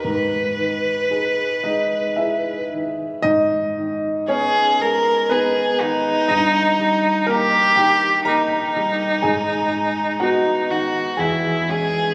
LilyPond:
<<
  \new Staff \with { instrumentName = "Violin" } { \time 3/4 \key gis \minor \tempo 4 = 60 b'2~ b'8 r8 | r4 gis'8 ais'8 gis'8 dis'8~ | dis'4 g'4 dis'4~ | dis'4 dis'8 fis'8 e'8 gis'8 | }
  \new Staff \with { instrumentName = "Grand piano" } { \time 3/4 \key gis \minor r4. <dis' dis''>8 <e' e''>4 | <dis' dis''>4 <cis' cis''>4 <b b'>4 | <dis' dis''>4 <ais ais'>8 <g' g''>8 <ais' ais''>4 | <gis' gis''>4 <fis' fis''>4 <gis' gis''>4 | }
  \new Staff \with { instrumentName = "Grand piano" } { \clef bass \time 3/4 \key gis \minor gis,8 dis8 <dis' gis'>8 gis8 <dis' gis'>8 dis8 | gis,8 dis8 <b dis'>8 gis8 dis'8 dis8 | g,8 g8 dis'8 dis8 <ais dis'>8 g8 | gis,8 gis8 <b dis'>8 dis8 e,8 <gis cis'>8 | }
>>